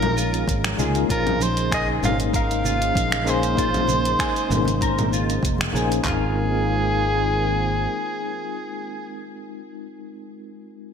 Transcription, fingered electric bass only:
Already playing: A#1
0.48 G#1
0.79 C#2
1.09 A#1
2.03 G#1
2.95 A#1
4.50 G#1
5.43 F1
5.74 A#1
6.05 G#1

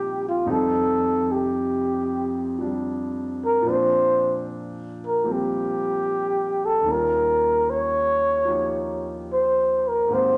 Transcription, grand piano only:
Already playing: C2 G2 A#2 D#3 F3 A#3 C4 D4 D#4 F4 G4
0.46 F2 F3 G3 C4 D#4
2.58 F3 G3 D4
3.62 A#2 F3 C4
3.67 D4
5.23 F3 G3 A#3 C4
6.81 D#2 D#3
6.86 G3 C#4
6.91 F4
8.45 F3 A#3 D#4 G4
10.08 G#2 D#3 A#3 C4
10.13 G4

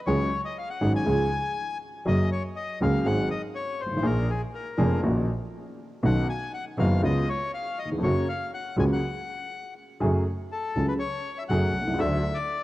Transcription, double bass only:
0.07 C#2
0.81 G#1
1.06 C#2
2.06 F#1
2.81 C#2
3.05 G#1
3.82 G#1
4.06 A#1
4.79 F1
5.04 A#1
6.04 B1
6.78 F#1
7.03 C#2
8.03 F#1
8.77 C#2
10.02 F#1
10.75 C#2
11.50 F#1
11.74 C2
12.00 D2

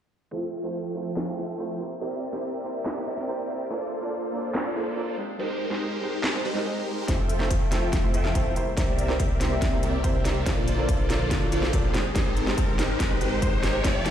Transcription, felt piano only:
0.31 A3 C4 E4 F4 C5
0.63 A3 C4 E4 F4 C5
0.95 A3 C4 E4 F4 C5
1.26 A3 C4 E4 F4 C5
1.58 A3 C4 E4 F4 C5
1.79 A#3 C4 E4 G4 C5
2.00 A#3 C4 E4 G4 C5
2.32 A#3 C4 E4 G4 C5
2.64 A#3 C4 E4 G4 C5
2.95 A#3 C4 E4 G4 C5
3.27 A#3 C4 E4 G4 C5
3.48 A#3 C4 E4 G4 C5
3.69 A#3 D4 F4 A4 D5
4.01 A#3 D4 F4 A4 D5
4.33 A#3 D4 F4 A4 D5
4.64 A#3 D4 F4 A4 D5
4.96 A#3 D4 F4 A4 D5
5.17 G#3 C4 D#4 G4 C5
5.38 G#3 C4 D#4 G4 C5
5.70 G#3 C4 D#4 G4 C5
6.02 G#3 C4 D#4 G4 C5
6.33 G#3 C4 D#4 G4 C5
6.54 G#3 C4 D#4 G4 D#5
6.65 G#3 C4 D#4 G4 D#5
7.07 A3 C4 E4 F4 C5
7.39 A3 C4 E4 F4 C5
7.71 A3 C4 E4 F4 C5
8.02 A3 C4 E4 F4 C5
8.34 A3 C4 E4 F4 C5
8.55 A#3 C4 E4 G4 C5
8.76 A#3 C4 E4 G4 C5
9.08 A#3 C4 E4 G4 C5
9.40 A#3 C4 E4 G4 C5
9.71 A#3 C4 E4 G4 C5
10.03 A#3 C4 E4 G4 C5
10.24 A#3 C4 E4 G4 C5
10.45 A#3 D4 F4 A4 D5
10.77 A#3 D4 F4 A4 D5
11.09 A#3 D4 F4 A4 D5
11.40 A#3 D4 F4 A4 D5
11.72 A#3 D4 F4 A4 D5
11.93 G#3 C4 D#4 G4 C5
12.14 G#3 C4 D#4 G4 C5
12.46 G#3 C4 D#4 G4 C5
12.78 G#3 C4 D#4 G4 C5
13.10 G#3 C4 D#4 G4 C5
13.41 G#3 C4 D#4 G4 C5
13.62 G#3 C4 D#4 G4 C5
13.83 A3 C4 E4 F4 C5

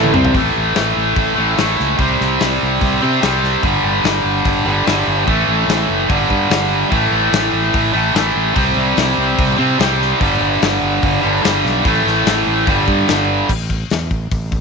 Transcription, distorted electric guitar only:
Already playing: A2 E3 A3
0.13 C3 G3 C4
0.33 A2 E3 A3
1.35 A2 E3 A3
1.55 A2 E3
1.59 A3
1.97 C3 G3
2.01 C4
3.01 C3 G3 C4
3.21 C3 G3 C4
3.63 G2 D3
3.67 G3
4.65 D3 G3
4.69 G2
4.85 G2 D3
4.89 G3
5.25 A2 E3 A3
6.07 G2 D3
6.11 G3
6.90 A2 E3
6.94 A3
7.93 A2 E3 A3
8.14 A2 E3 A3
8.54 C3 G3
8.58 C4
9.57 C3 G3 C4
9.78 C3 G3
9.83 C4
10.19 G2 D3
10.24 G3
11.21 G2 D3 G3
11.42 G2 D3 G3
11.83 A2 E3
11.88 A3
12.65 G2 D3
12.70 G3

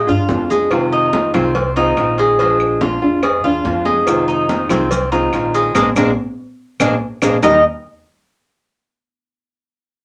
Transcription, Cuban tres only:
0.09 F4
0.50 G#3
0.92 D#4
1.34 C4
1.77 D#4
2.19 G#3
2.40 G#3
2.81 F4
3.23 G#3
3.44 F4
3.85 G#3
4.28 D#4
4.70 C4
5.12 D#4
5.55 G#3
5.75 G#3 A#3 D4
5.96 G#3 A#3 D4
6.80 G#3 A#3 D4
7.22 G#3 A#3 D4
7.43 D#4 A#4 D#5

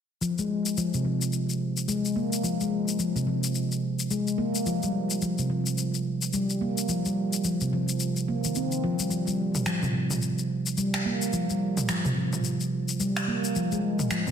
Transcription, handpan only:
0.21 F3
0.39 G#3
0.78 F3
0.94 C3
1.05 F3
1.88 G#3
2.16 A#3
2.43 F3
2.61 G#3
2.99 F3
3.16 C3
3.27 F3
4.11 G#3
4.38 A#3
4.66 F3
4.83 G3
5.22 F3
5.39 C3
5.50 F3
6.34 G3
6.61 A#3
6.89 F3
7.06 G3
7.45 F3
7.61 C3
7.73 F3
8.28 A#3
8.45 D#3
8.56 C4
8.84 F3
8.99 G3
9.10 F3
9.27 G3
9.66 F3
9.83 C3
9.94 F3
10.77 G3
11.06 A#3
11.33 F3
11.50 G3
11.89 F3
12.05 C3
12.16 F3
13.00 G3
13.28 A#3
13.56 F3
13.72 G#3
14.11 F3
14.28 C3

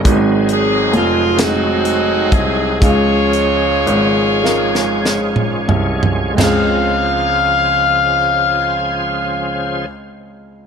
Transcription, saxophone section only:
0.52 G#4
0.96 F4
1.40 C4 D#4 F#4
2.34 G#4
2.83 F4 G#4 C#5
6.39 F5

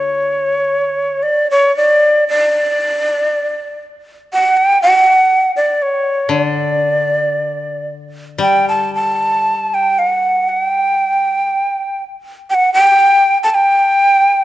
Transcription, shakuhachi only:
Already playing: C#5
1.23 D5
1.51 C#5
1.77 D5
2.28 D5
4.33 F#5
4.57 G5
4.82 F#5
5.56 D5
5.82 C#5
6.32 D5
8.41 G5
8.69 A5
8.95 A5
9.74 G5
9.99 F#5
10.49 F#5
10.64 G5
12.50 G5
12.54 F#5
12.74 G5
13.43 A5
13.50 A5
13.54 G5

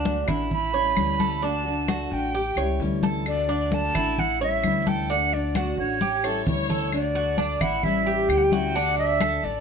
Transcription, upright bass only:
Already playing: D2
0.28 A1
0.97 D2
2.11 A1
2.56 C#2
2.80 D2
3.95 A1
4.63 D2
5.77 A1
6.46 D2
7.61 A1
8.29 D2
9.43 A1

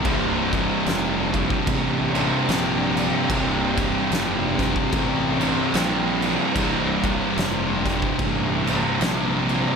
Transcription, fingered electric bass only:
0.05 C1
0.86 F1
1.68 A1
2.48 A#1
3.30 C1
4.10 F1
4.93 A1
5.73 A#1
6.56 C1
7.37 F1
8.20 A1
9.01 A#1

